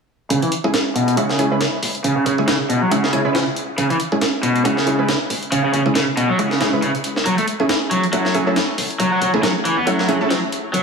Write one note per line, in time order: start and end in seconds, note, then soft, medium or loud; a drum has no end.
0.30 0.38 C#3 medium
0.30 kick loud
0.30 closed hi-hat medium
0.42 0.49 E3 medium
0.42 closed hi-hat soft
0.52 closed hi-hat medium
0.64 1.15 G#3 medium
0.64 1.15 C#4 medium
0.64 1.15 E4 medium
0.64 1.15 G#4 medium
0.64 kick medium
0.74 snare loud
0.74 closed hi-hat medium
0.95 1.16 B2 medium
0.95 closed hi-hat medium
1.08 closed hi-hat soft
1.17 1.60 C#3 medium
1.17 1.28 G#3 medium
1.17 1.28 C#4 medium
1.17 1.28 E4 medium
1.17 1.28 F#4 loud
1.17 closed hi-hat medium
1.29 snare soft
1.39 1.48 G#3 medium
1.39 1.48 C#4 medium
1.39 1.48 E4 medium
1.39 1.48 G#4 loud
1.39 kick medium
1.39 closed hi-hat medium
1.51 1.60 G#3 medium
1.51 1.60 C#4 medium
1.51 1.60 E4 medium
1.51 1.60 B4 loud
1.61 snare loud
1.61 closed hi-hat medium
1.83 kick medium
1.83 open hi-hat medium
1.95 closed hi-hat soft
2.04 2.15 C#3 medium
2.04 kick loud
2.04 closed hi-hat medium
2.16 2.25 C#3 medium
2.26 2.34 C#3 medium
2.26 kick medium
2.26 closed hi-hat medium
2.38 2.89 G#3 medium
2.38 2.89 C#4 medium
2.38 2.89 E4 medium
2.38 2.89 G#4 medium
2.38 kick medium
2.48 2.56 C#3 medium
2.48 snare loud
2.48 closed hi-hat medium
2.69 2.80 B2 medium
2.69 closed hi-hat medium
2.82 2.90 F#3 medium
2.91 3.12 C#3 medium
2.91 3.02 G#3 loud
2.91 3.02 C#4 medium
2.91 3.02 E4 medium
2.91 3.02 F#4 loud
2.91 closed hi-hat medium
3.04 snare soft
3.13 3.21 C#3 medium
3.13 3.22 G#3 medium
3.13 3.22 C#4 medium
3.13 3.22 E4 medium
3.13 3.22 G#4 medium
3.13 kick medium
3.13 closed hi-hat medium
3.25 3.33 G#3 medium
3.25 3.34 C#4 medium
3.25 3.33 E4 medium
3.25 3.34 B4 loud
3.34 3.43 C#3 medium
3.34 snare loud
3.34 closed hi-hat medium
3.56 closed hi-hat medium
3.78 3.86 C#3 medium
3.78 kick loud
3.78 closed hi-hat medium
3.90 3.97 E3 medium
3.90 closed hi-hat soft
4.00 closed hi-hat medium
4.12 4.63 G#3 medium
4.12 4.63 C#4 medium
4.12 4.63 E4 medium
4.12 4.63 G#4 medium
4.12 kick medium
4.21 snare loud
4.21 closed hi-hat medium
4.43 4.64 B2 medium
4.43 closed hi-hat medium
4.56 closed hi-hat soft
4.65 5.08 C#3 medium
4.65 4.76 G#3 loud
4.65 4.76 C#4 medium
4.65 4.76 E4 medium
4.65 4.76 F#4 loud
4.65 closed hi-hat medium
4.77 snare soft
4.86 4.96 G#3 medium
4.86 4.96 C#4 medium
4.86 4.96 E4 medium
4.86 4.96 G#4 loud
4.86 kick medium
4.86 closed hi-hat medium
4.99 5.07 G#3 medium
4.99 5.07 C#4 medium
4.99 5.07 E4 medium
4.99 5.07 B4 loud
5.09 snare loud
5.09 closed hi-hat medium
5.30 kick medium
5.30 open hi-hat medium
5.43 closed hi-hat soft
5.52 5.63 C#3 medium
5.52 kick loud
5.52 closed hi-hat medium
5.64 5.72 C#3 medium
5.73 5.82 C#3 medium
5.73 kick medium
5.73 closed hi-hat medium
5.85 6.36 G#3 medium
5.85 6.37 C#4 medium
5.85 6.36 E4 medium
5.85 6.36 G#4 medium
5.85 kick medium
5.95 6.04 C#3 medium
5.95 snare loud
5.95 closed hi-hat medium
6.17 6.28 B2 medium
6.17 closed hi-hat medium
6.29 6.38 F#3 medium
6.39 6.59 C#3 medium
6.39 6.50 G#3 medium
6.39 6.50 C#4 medium
6.39 6.50 E4 medium
6.39 6.50 F#4 loud
6.39 closed hi-hat medium
6.51 snare soft
6.60 6.69 C#3 medium
6.60 6.71 G#3 medium
6.60 6.71 C#4 medium
6.60 6.71 E4 medium
6.60 6.71 G#4 medium
6.60 snare medium
6.60 closed hi-hat medium
6.73 6.88 G#3 medium
6.73 6.88 C#4 medium
6.73 6.88 E4 medium
6.73 6.88 B4 medium
6.82 6.91 C#3 medium
6.82 closed hi-hat medium
6.95 closed hi-hat soft
7.04 closed hi-hat medium
7.16 snare soft
7.26 7.34 F#3 medium
7.26 kick loud
7.26 closed hi-hat medium
7.38 7.44 A3 medium
7.38 closed hi-hat soft
7.48 closed hi-hat medium
7.60 8.11 A3 medium
7.60 8.11 C#4 medium
7.60 8.11 E4 medium
7.60 8.11 G#4 medium
7.60 kick medium
7.69 snare loud
7.69 closed hi-hat medium
7.91 8.03 F#3 medium
7.91 closed hi-hat medium
8.04 closed hi-hat soft
8.13 8.55 F#3 medium
8.13 8.24 A3 loud
8.13 8.24 C#4 medium
8.13 8.24 E4 medium
8.13 8.24 F#4 loud
8.13 closed hi-hat medium
8.25 snare soft
8.34 8.44 A3 medium
8.34 8.44 C#4 medium
8.34 8.44 E4 medium
8.34 8.44 G#4 loud
8.34 kick medium
8.34 closed hi-hat medium
8.47 8.55 A3 medium
8.47 8.55 C#4 medium
8.47 8.55 E4 medium
8.47 8.55 A4 loud
8.56 snare loud
8.56 closed hi-hat medium
8.78 kick medium
8.78 open hi-hat medium
8.90 closed hi-hat soft
9.00 9.11 F#3 medium
9.00 kick loud
9.00 closed hi-hat medium
9.12 9.20 F#3 medium
9.22 9.30 F#3 medium
9.22 kick medium
9.22 closed hi-hat medium
9.33 9.84 A3 medium
9.33 9.84 C#4 medium
9.33 9.84 E4 medium
9.33 9.84 G#4 medium
9.33 kick medium
9.43 9.51 F#3 medium
9.43 snare loud
9.43 closed hi-hat medium
9.65 9.76 E3 medium
9.65 closed hi-hat medium
9.77 9.86 B3 medium
9.87 10.07 F#3 medium
9.87 9.98 A3 loud
9.87 9.98 C#4 medium
9.87 9.98 E4 medium
9.87 9.98 F#4 loud
9.87 closed hi-hat medium
9.99 snare soft
10.08 10.17 F#3 medium
10.08 10.18 A3 medium
10.08 10.18 C#4 medium
10.08 10.18 E4 medium
10.08 10.18 G#4 loud
10.08 kick medium
10.08 closed hi-hat medium
10.21 10.29 A3 medium
10.21 10.29 C#4 medium
10.21 10.29 E4 medium
10.21 10.29 A4 loud
10.30 10.39 F#3 medium
10.30 snare loud
10.30 closed hi-hat medium
10.52 closed hi-hat medium
10.73 10.82 F#3 medium
10.73 kick loud
10.73 closed hi-hat medium
10.73 riser medium